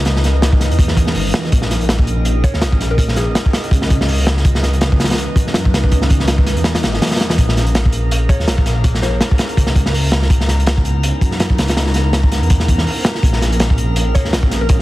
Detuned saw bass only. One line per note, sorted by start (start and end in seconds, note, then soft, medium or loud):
0.00 0.70 C#2 medium
0.71 1.15 E2 loud
1.16 1.33 G#1 loud
1.34 1.51 E2 medium
1.53 2.43 A#1 loud
2.54 2.64 D#2 medium
2.62 2.89 A#1 medium
2.91 3.34 A#1 loud
3.71 4.44 C#2 medium
4.45 5.27 C#2 medium
5.36 5.72 F#2 medium
5.74 6.55 C#2 medium
6.57 6.85 E2 loud
6.83 7.00 G#1 medium
7.01 7.37 E2 medium
7.38 8.28 A#1 loud
8.40 8.49 D#2 medium
8.48 8.74 A#1 medium
8.76 9.20 A#1 loud
9.57 10.29 C#2 medium
10.30 11.12 C#2 medium
11.21 11.57 F#2 medium
11.59 12.40 C#2 medium
12.42 12.85 E2 loud
13.23 14.13 A#1 loud
14.25 14.35 D#2 medium
14.33 14.60 A#1 medium
14.61 14.82 A#1 loud